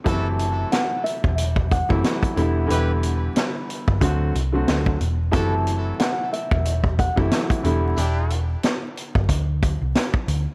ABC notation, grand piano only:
X:1
M:4/4
L:1/16
Q:"Swing 16ths" 1/4=91
K:Em
V:1 name="Grand piano" clef=bass
[C,E,F,A,E]8- [C,E,F,A,E]2 z [C,E,F,A,E]3 [D,E,G,B,E]2 | [D,E,G,B,E]8 [D,F,A,CF]2 z [D,F,A,CF]3 z2 | [C,E,F,A,E]8- [C,E,F,A,E]2 z [C,E,F,A,E]3 [D,E,G,B,E]2 | z16 |]